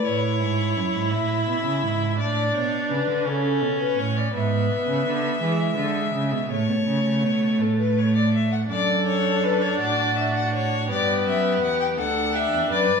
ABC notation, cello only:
X:1
M:12/8
L:1/16
Q:3/8=55
K:D
V:1 name="Cello" clef=bass
A,,2 ^G,,2 F,, G,, A,,2 B,, C, G,,2 A,,2 B,,2 C, D, C,2 B,,2 A,,2 | ^G,,2 B,, C, D,2 E,2 D,2 C, B,, A,, B,, C, C, B,,2 A,,6 | F,,6 A,,6 G,,2 F,,2 E,,2 D,,3 E,, F,, G,, |]